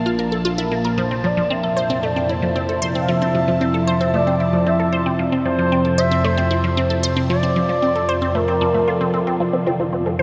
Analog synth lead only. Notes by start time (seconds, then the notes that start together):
0.98 C5
1.25 D5
1.52 E5
2.04 D5
2.31 C5
2.57 C5
3.01 F5
3.09 E5
4.14 D5
4.67 E5
5.45 C5
5.98 E5
6.24 C5
7.29 D5
8.35 A#4
8.88 A4